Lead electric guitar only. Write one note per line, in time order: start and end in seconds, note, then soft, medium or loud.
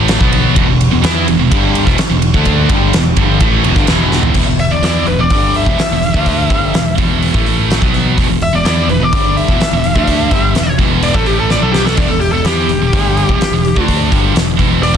4.60 4.71 E5 medium
4.71 4.83 D5 medium
4.85 5.07 D5 medium
5.08 5.20 B4 medium
5.20 5.54 D5 medium
5.56 6.95 E5 medium
8.43 8.53 E5 loud
8.55 8.65 D5 medium
8.66 8.88 D5 medium
8.90 9.03 B4 medium
9.03 9.36 D5 medium
9.37 10.75 E5 loud
11.04 11.14 D5 loud
11.15 11.27 A4 medium
11.27 11.38 G4 medium
11.39 11.50 A4 medium
11.51 11.62 D5 medium
11.62 11.72 A4 loud
11.73 11.85 G4 medium
11.86 11.97 A4 medium
11.98 12.09 D5 medium
12.09 12.20 A4 medium
12.21 12.32 G4 medium
12.32 12.45 A4 medium
12.45 13.83 G4 medium
14.83 14.94 D5 loud